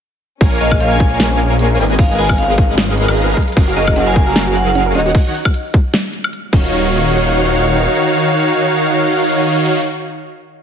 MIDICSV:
0, 0, Header, 1, 7, 480
1, 0, Start_track
1, 0, Key_signature, -6, "minor"
1, 0, Tempo, 394737
1, 497, Time_signature, 4, 2, 24, 8
1, 12922, End_track
2, 0, Start_track
2, 0, Title_t, "Vibraphone"
2, 0, Program_c, 0, 11
2, 739, Note_on_c, 0, 75, 90
2, 823, Note_off_c, 0, 75, 0
2, 978, Note_on_c, 0, 77, 94
2, 1084, Note_off_c, 0, 77, 0
2, 1109, Note_on_c, 0, 80, 90
2, 1776, Note_off_c, 0, 80, 0
2, 2418, Note_on_c, 0, 77, 90
2, 2594, Note_off_c, 0, 77, 0
2, 2659, Note_on_c, 0, 80, 90
2, 2834, Note_off_c, 0, 80, 0
2, 2894, Note_on_c, 0, 77, 96
2, 2981, Note_off_c, 0, 77, 0
2, 3029, Note_on_c, 0, 77, 79
2, 3098, Note_off_c, 0, 77, 0
2, 4578, Note_on_c, 0, 75, 89
2, 4662, Note_off_c, 0, 75, 0
2, 4708, Note_on_c, 0, 75, 84
2, 4777, Note_off_c, 0, 75, 0
2, 4816, Note_on_c, 0, 78, 98
2, 4922, Note_off_c, 0, 78, 0
2, 4949, Note_on_c, 0, 80, 94
2, 5189, Note_on_c, 0, 82, 87
2, 5351, Note_off_c, 0, 82, 0
2, 5537, Note_on_c, 0, 78, 96
2, 5617, Note_off_c, 0, 80, 0
2, 5622, Note_off_c, 0, 78, 0
2, 5671, Note_on_c, 0, 78, 85
2, 5739, Note_off_c, 0, 78, 0
2, 6019, Note_on_c, 0, 75, 91
2, 6194, Note_off_c, 0, 75, 0
2, 12922, End_track
3, 0, Start_track
3, 0, Title_t, "Supersaw synth"
3, 0, Program_c, 1, 81
3, 497, Note_on_c, 1, 58, 91
3, 497, Note_on_c, 1, 70, 83
3, 497, Note_on_c, 1, 73, 83
3, 498, Note_on_c, 1, 77, 80
3, 498, Note_on_c, 1, 80, 95
3, 711, Note_off_c, 1, 58, 0
3, 711, Note_off_c, 1, 70, 0
3, 712, Note_off_c, 1, 73, 0
3, 712, Note_off_c, 1, 77, 0
3, 712, Note_off_c, 1, 80, 0
3, 736, Note_on_c, 1, 58, 95
3, 736, Note_on_c, 1, 70, 84
3, 736, Note_on_c, 1, 73, 84
3, 736, Note_on_c, 1, 77, 86
3, 737, Note_on_c, 1, 80, 103
3, 951, Note_off_c, 1, 58, 0
3, 951, Note_off_c, 1, 70, 0
3, 951, Note_off_c, 1, 73, 0
3, 951, Note_off_c, 1, 77, 0
3, 951, Note_off_c, 1, 80, 0
3, 977, Note_on_c, 1, 77, 90
3, 978, Note_on_c, 1, 58, 98
3, 978, Note_on_c, 1, 70, 94
3, 978, Note_on_c, 1, 73, 94
3, 978, Note_on_c, 1, 80, 110
3, 1431, Note_off_c, 1, 77, 0
3, 1432, Note_off_c, 1, 58, 0
3, 1432, Note_off_c, 1, 70, 0
3, 1432, Note_off_c, 1, 73, 0
3, 1432, Note_off_c, 1, 80, 0
3, 1456, Note_on_c, 1, 58, 88
3, 1456, Note_on_c, 1, 77, 81
3, 1457, Note_on_c, 1, 70, 83
3, 1457, Note_on_c, 1, 73, 82
3, 1457, Note_on_c, 1, 80, 96
3, 2151, Note_off_c, 1, 58, 0
3, 2151, Note_off_c, 1, 70, 0
3, 2151, Note_off_c, 1, 73, 0
3, 2151, Note_off_c, 1, 77, 0
3, 2151, Note_off_c, 1, 80, 0
3, 2175, Note_on_c, 1, 68, 82
3, 2175, Note_on_c, 1, 75, 83
3, 2176, Note_on_c, 1, 56, 89
3, 2176, Note_on_c, 1, 70, 85
3, 2176, Note_on_c, 1, 71, 84
3, 2176, Note_on_c, 1, 80, 98
3, 2630, Note_off_c, 1, 68, 0
3, 2631, Note_off_c, 1, 56, 0
3, 2631, Note_off_c, 1, 70, 0
3, 2631, Note_off_c, 1, 71, 0
3, 2631, Note_off_c, 1, 75, 0
3, 2631, Note_off_c, 1, 80, 0
3, 2657, Note_on_c, 1, 56, 84
3, 2657, Note_on_c, 1, 68, 79
3, 2657, Note_on_c, 1, 71, 81
3, 2657, Note_on_c, 1, 75, 76
3, 2657, Note_on_c, 1, 77, 93
3, 2658, Note_on_c, 1, 70, 75
3, 2871, Note_off_c, 1, 56, 0
3, 2871, Note_off_c, 1, 68, 0
3, 2871, Note_off_c, 1, 71, 0
3, 2871, Note_off_c, 1, 75, 0
3, 2871, Note_off_c, 1, 77, 0
3, 2872, Note_off_c, 1, 70, 0
3, 2897, Note_on_c, 1, 56, 83
3, 2897, Note_on_c, 1, 68, 80
3, 2897, Note_on_c, 1, 70, 77
3, 2897, Note_on_c, 1, 77, 99
3, 2898, Note_on_c, 1, 71, 77
3, 2898, Note_on_c, 1, 75, 79
3, 3718, Note_off_c, 1, 56, 0
3, 3718, Note_off_c, 1, 68, 0
3, 3718, Note_off_c, 1, 70, 0
3, 3718, Note_off_c, 1, 71, 0
3, 3718, Note_off_c, 1, 75, 0
3, 3718, Note_off_c, 1, 77, 0
3, 3751, Note_on_c, 1, 56, 78
3, 3751, Note_on_c, 1, 71, 74
3, 3751, Note_on_c, 1, 75, 73
3, 3751, Note_on_c, 1, 77, 90
3, 3752, Note_on_c, 1, 68, 71
3, 3752, Note_on_c, 1, 70, 71
3, 4085, Note_off_c, 1, 56, 0
3, 4085, Note_off_c, 1, 68, 0
3, 4085, Note_off_c, 1, 70, 0
3, 4085, Note_off_c, 1, 71, 0
3, 4085, Note_off_c, 1, 75, 0
3, 4085, Note_off_c, 1, 77, 0
3, 4337, Note_on_c, 1, 54, 89
3, 4338, Note_on_c, 1, 66, 86
3, 4338, Note_on_c, 1, 68, 84
3, 4338, Note_on_c, 1, 70, 80
3, 4338, Note_on_c, 1, 77, 99
3, 4552, Note_off_c, 1, 54, 0
3, 4552, Note_off_c, 1, 66, 0
3, 4552, Note_off_c, 1, 68, 0
3, 4552, Note_off_c, 1, 70, 0
3, 4552, Note_off_c, 1, 77, 0
3, 4579, Note_on_c, 1, 66, 84
3, 4579, Note_on_c, 1, 70, 87
3, 4579, Note_on_c, 1, 77, 99
3, 4580, Note_on_c, 1, 54, 94
3, 4580, Note_on_c, 1, 68, 86
3, 4792, Note_off_c, 1, 66, 0
3, 4792, Note_off_c, 1, 70, 0
3, 4792, Note_off_c, 1, 77, 0
3, 4793, Note_off_c, 1, 54, 0
3, 4793, Note_off_c, 1, 68, 0
3, 4816, Note_on_c, 1, 54, 99
3, 4817, Note_on_c, 1, 66, 93
3, 4817, Note_on_c, 1, 68, 93
3, 4817, Note_on_c, 1, 70, 91
3, 4817, Note_on_c, 1, 77, 110
3, 5271, Note_off_c, 1, 54, 0
3, 5271, Note_off_c, 1, 66, 0
3, 5271, Note_off_c, 1, 68, 0
3, 5271, Note_off_c, 1, 70, 0
3, 5271, Note_off_c, 1, 77, 0
3, 5297, Note_on_c, 1, 54, 92
3, 5298, Note_on_c, 1, 68, 84
3, 5298, Note_on_c, 1, 70, 80
3, 5298, Note_on_c, 1, 77, 100
3, 5299, Note_on_c, 1, 66, 83
3, 5991, Note_off_c, 1, 54, 0
3, 5992, Note_off_c, 1, 66, 0
3, 5992, Note_off_c, 1, 68, 0
3, 5992, Note_off_c, 1, 70, 0
3, 5992, Note_off_c, 1, 77, 0
3, 6019, Note_on_c, 1, 51, 89
3, 6019, Note_on_c, 1, 63, 83
3, 6019, Note_on_c, 1, 66, 83
3, 6019, Note_on_c, 1, 73, 85
3, 6019, Note_on_c, 1, 78, 103
3, 6472, Note_off_c, 1, 51, 0
3, 6472, Note_off_c, 1, 63, 0
3, 6472, Note_off_c, 1, 66, 0
3, 6472, Note_off_c, 1, 73, 0
3, 6472, Note_off_c, 1, 78, 0
3, 7938, Note_on_c, 1, 51, 91
3, 7938, Note_on_c, 1, 63, 81
3, 7938, Note_on_c, 1, 66, 80
3, 7938, Note_on_c, 1, 73, 83
3, 7938, Note_on_c, 1, 77, 95
3, 11918, Note_off_c, 1, 51, 0
3, 11918, Note_off_c, 1, 63, 0
3, 11918, Note_off_c, 1, 66, 0
3, 11918, Note_off_c, 1, 73, 0
3, 11918, Note_off_c, 1, 77, 0
3, 12922, End_track
4, 0, Start_track
4, 0, Title_t, "String section"
4, 0, Program_c, 2, 48
4, 498, Note_on_c, 2, 58, 72
4, 499, Note_on_c, 2, 56, 79
4, 499, Note_on_c, 2, 61, 85
4, 2161, Note_off_c, 2, 56, 0
4, 2161, Note_off_c, 2, 58, 0
4, 2161, Note_off_c, 2, 61, 0
4, 2176, Note_on_c, 2, 61, 89
4, 2177, Note_on_c, 2, 53, 82
4, 2177, Note_on_c, 2, 59, 74
4, 4078, Note_off_c, 2, 53, 0
4, 4078, Note_off_c, 2, 59, 0
4, 4078, Note_off_c, 2, 61, 0
4, 4097, Note_on_c, 2, 54, 84
4, 4097, Note_on_c, 2, 68, 74
4, 4098, Note_on_c, 2, 70, 92
4, 4099, Note_on_c, 2, 77, 78
4, 6236, Note_off_c, 2, 54, 0
4, 6236, Note_off_c, 2, 68, 0
4, 6236, Note_off_c, 2, 70, 0
4, 6236, Note_off_c, 2, 77, 0
4, 7938, Note_on_c, 2, 63, 79
4, 7939, Note_on_c, 2, 73, 95
4, 7940, Note_on_c, 2, 51, 85
4, 7940, Note_on_c, 2, 66, 77
4, 11919, Note_off_c, 2, 63, 0
4, 11919, Note_off_c, 2, 73, 0
4, 11920, Note_off_c, 2, 51, 0
4, 11920, Note_off_c, 2, 66, 0
4, 12922, End_track
5, 0, Start_track
5, 0, Title_t, "Synth arpeggio sound"
5, 0, Program_c, 3, 84
5, 4337, Note_on_c, 3, 61, 106
5, 4413, Note_off_c, 3, 61, 0
5, 4471, Note_on_c, 3, 66, 103
5, 4532, Note_off_c, 3, 66, 0
5, 4579, Note_on_c, 3, 61, 80
5, 4624, Note_off_c, 3, 61, 0
5, 4712, Note_on_c, 3, 68, 74
5, 4748, Note_off_c, 3, 68, 0
5, 4818, Note_on_c, 3, 61, 103
5, 4863, Note_off_c, 3, 61, 0
5, 4953, Note_on_c, 3, 70, 102
5, 5013, Note_off_c, 3, 70, 0
5, 5060, Note_on_c, 3, 61, 100
5, 5104, Note_off_c, 3, 61, 0
5, 5192, Note_on_c, 3, 66, 106
5, 5228, Note_off_c, 3, 66, 0
5, 5300, Note_on_c, 3, 61, 107
5, 5374, Note_off_c, 3, 61, 0
5, 5432, Note_on_c, 3, 66, 108
5, 5492, Note_off_c, 3, 66, 0
5, 5540, Note_on_c, 3, 61, 77
5, 5584, Note_off_c, 3, 61, 0
5, 5672, Note_on_c, 3, 68, 78
5, 5708, Note_off_c, 3, 68, 0
5, 5779, Note_on_c, 3, 61, 109
5, 5824, Note_off_c, 3, 61, 0
5, 5912, Note_on_c, 3, 70, 102
5, 5972, Note_off_c, 3, 70, 0
5, 6020, Note_on_c, 3, 61, 102
5, 6064, Note_off_c, 3, 61, 0
5, 6152, Note_on_c, 3, 66, 105
5, 6188, Note_off_c, 3, 66, 0
5, 7938, Note_on_c, 3, 61, 95
5, 8384, Note_off_c, 3, 61, 0
5, 12922, End_track
6, 0, Start_track
6, 0, Title_t, "Detuned saw bass"
6, 0, Program_c, 4, 39
6, 498, Note_on_c, 4, 34, 95
6, 716, Note_off_c, 4, 34, 0
6, 738, Note_on_c, 4, 34, 99
6, 956, Note_off_c, 4, 34, 0
6, 978, Note_on_c, 4, 34, 106
6, 1436, Note_off_c, 4, 34, 0
6, 1457, Note_on_c, 4, 34, 94
6, 2156, Note_off_c, 4, 34, 0
6, 2177, Note_on_c, 4, 32, 96
6, 2636, Note_off_c, 4, 32, 0
6, 2657, Note_on_c, 4, 32, 99
6, 2876, Note_off_c, 4, 32, 0
6, 2898, Note_on_c, 4, 32, 103
6, 3724, Note_off_c, 4, 32, 0
6, 3751, Note_on_c, 4, 32, 102
6, 4063, Note_off_c, 4, 32, 0
6, 4338, Note_on_c, 4, 30, 94
6, 4556, Note_off_c, 4, 30, 0
6, 4576, Note_on_c, 4, 30, 101
6, 4795, Note_off_c, 4, 30, 0
6, 4817, Note_on_c, 4, 30, 105
6, 5276, Note_off_c, 4, 30, 0
6, 5298, Note_on_c, 4, 30, 99
6, 5996, Note_off_c, 4, 30, 0
6, 6017, Note_on_c, 4, 27, 97
6, 6236, Note_off_c, 4, 27, 0
6, 7939, Note_on_c, 4, 27, 96
6, 9569, Note_off_c, 4, 27, 0
6, 12922, End_track
7, 0, Start_track
7, 0, Title_t, "Drums"
7, 497, Note_on_c, 9, 36, 119
7, 497, Note_on_c, 9, 42, 83
7, 497, Note_on_c, 9, 49, 46
7, 619, Note_off_c, 9, 36, 0
7, 619, Note_off_c, 9, 42, 0
7, 619, Note_off_c, 9, 49, 0
7, 737, Note_on_c, 9, 42, 71
7, 859, Note_off_c, 9, 42, 0
7, 870, Note_on_c, 9, 36, 63
7, 870, Note_on_c, 9, 76, 79
7, 977, Note_on_c, 9, 42, 82
7, 991, Note_off_c, 9, 36, 0
7, 992, Note_off_c, 9, 76, 0
7, 1099, Note_off_c, 9, 42, 0
7, 1217, Note_on_c, 9, 36, 112
7, 1218, Note_on_c, 9, 42, 69
7, 1339, Note_off_c, 9, 36, 0
7, 1339, Note_off_c, 9, 42, 0
7, 1457, Note_on_c, 9, 38, 121
7, 1457, Note_on_c, 9, 42, 84
7, 1579, Note_off_c, 9, 38, 0
7, 1579, Note_off_c, 9, 42, 0
7, 1697, Note_on_c, 9, 42, 71
7, 1819, Note_off_c, 9, 42, 0
7, 1937, Note_on_c, 9, 42, 82
7, 2059, Note_off_c, 9, 42, 0
7, 2177, Note_on_c, 9, 46, 61
7, 2243, Note_on_c, 9, 42, 69
7, 2298, Note_off_c, 9, 46, 0
7, 2309, Note_off_c, 9, 42, 0
7, 2309, Note_on_c, 9, 42, 50
7, 2364, Note_off_c, 9, 42, 0
7, 2364, Note_on_c, 9, 42, 65
7, 2417, Note_on_c, 9, 36, 125
7, 2418, Note_off_c, 9, 42, 0
7, 2418, Note_on_c, 9, 42, 82
7, 2418, Note_on_c, 9, 49, 48
7, 2538, Note_off_c, 9, 36, 0
7, 2539, Note_off_c, 9, 42, 0
7, 2539, Note_off_c, 9, 49, 0
7, 2656, Note_on_c, 9, 42, 67
7, 2778, Note_off_c, 9, 42, 0
7, 2789, Note_on_c, 9, 36, 65
7, 2789, Note_on_c, 9, 76, 79
7, 2897, Note_on_c, 9, 42, 80
7, 2911, Note_off_c, 9, 36, 0
7, 2911, Note_off_c, 9, 76, 0
7, 3018, Note_off_c, 9, 42, 0
7, 3136, Note_on_c, 9, 42, 67
7, 3137, Note_on_c, 9, 36, 113
7, 3258, Note_off_c, 9, 36, 0
7, 3258, Note_off_c, 9, 42, 0
7, 3377, Note_on_c, 9, 38, 124
7, 3377, Note_on_c, 9, 42, 81
7, 3499, Note_off_c, 9, 38, 0
7, 3499, Note_off_c, 9, 42, 0
7, 3618, Note_on_c, 9, 42, 68
7, 3740, Note_off_c, 9, 42, 0
7, 3750, Note_on_c, 9, 76, 75
7, 3858, Note_on_c, 9, 42, 82
7, 3872, Note_off_c, 9, 76, 0
7, 3980, Note_off_c, 9, 42, 0
7, 4097, Note_on_c, 9, 36, 65
7, 4099, Note_on_c, 9, 46, 60
7, 4165, Note_on_c, 9, 42, 67
7, 4219, Note_off_c, 9, 36, 0
7, 4220, Note_off_c, 9, 46, 0
7, 4231, Note_off_c, 9, 42, 0
7, 4231, Note_on_c, 9, 42, 48
7, 4284, Note_off_c, 9, 42, 0
7, 4284, Note_on_c, 9, 42, 62
7, 4338, Note_on_c, 9, 36, 122
7, 4339, Note_off_c, 9, 42, 0
7, 4339, Note_on_c, 9, 42, 77
7, 4339, Note_on_c, 9, 49, 52
7, 4459, Note_off_c, 9, 36, 0
7, 4460, Note_off_c, 9, 42, 0
7, 4460, Note_off_c, 9, 49, 0
7, 4578, Note_on_c, 9, 42, 64
7, 4700, Note_off_c, 9, 42, 0
7, 4710, Note_on_c, 9, 36, 66
7, 4711, Note_on_c, 9, 76, 81
7, 4819, Note_on_c, 9, 42, 80
7, 4832, Note_off_c, 9, 36, 0
7, 4833, Note_off_c, 9, 76, 0
7, 4941, Note_off_c, 9, 42, 0
7, 5058, Note_on_c, 9, 36, 119
7, 5060, Note_on_c, 9, 42, 65
7, 5179, Note_off_c, 9, 36, 0
7, 5181, Note_off_c, 9, 42, 0
7, 5299, Note_on_c, 9, 38, 127
7, 5299, Note_on_c, 9, 42, 80
7, 5421, Note_off_c, 9, 38, 0
7, 5421, Note_off_c, 9, 42, 0
7, 5539, Note_on_c, 9, 42, 67
7, 5660, Note_off_c, 9, 42, 0
7, 5779, Note_on_c, 9, 42, 77
7, 5901, Note_off_c, 9, 42, 0
7, 6019, Note_on_c, 9, 46, 62
7, 6084, Note_on_c, 9, 42, 66
7, 6140, Note_off_c, 9, 46, 0
7, 6151, Note_off_c, 9, 42, 0
7, 6151, Note_on_c, 9, 42, 48
7, 6204, Note_off_c, 9, 42, 0
7, 6204, Note_on_c, 9, 42, 65
7, 6258, Note_off_c, 9, 42, 0
7, 6258, Note_on_c, 9, 36, 125
7, 6258, Note_on_c, 9, 42, 77
7, 6258, Note_on_c, 9, 49, 51
7, 6380, Note_off_c, 9, 36, 0
7, 6380, Note_off_c, 9, 42, 0
7, 6380, Note_off_c, 9, 49, 0
7, 6499, Note_on_c, 9, 42, 65
7, 6621, Note_off_c, 9, 42, 0
7, 6631, Note_on_c, 9, 36, 66
7, 6631, Note_on_c, 9, 76, 85
7, 6739, Note_on_c, 9, 42, 77
7, 6752, Note_off_c, 9, 76, 0
7, 6753, Note_off_c, 9, 36, 0
7, 6861, Note_off_c, 9, 42, 0
7, 6978, Note_on_c, 9, 42, 67
7, 6979, Note_on_c, 9, 36, 112
7, 7100, Note_off_c, 9, 36, 0
7, 7100, Note_off_c, 9, 42, 0
7, 7219, Note_on_c, 9, 38, 122
7, 7219, Note_on_c, 9, 42, 80
7, 7340, Note_off_c, 9, 38, 0
7, 7340, Note_off_c, 9, 42, 0
7, 7459, Note_on_c, 9, 42, 64
7, 7580, Note_off_c, 9, 42, 0
7, 7592, Note_on_c, 9, 76, 86
7, 7699, Note_on_c, 9, 42, 77
7, 7713, Note_off_c, 9, 76, 0
7, 7821, Note_off_c, 9, 42, 0
7, 7938, Note_on_c, 9, 57, 92
7, 7939, Note_on_c, 9, 36, 117
7, 8060, Note_off_c, 9, 36, 0
7, 8060, Note_off_c, 9, 57, 0
7, 12922, End_track
0, 0, End_of_file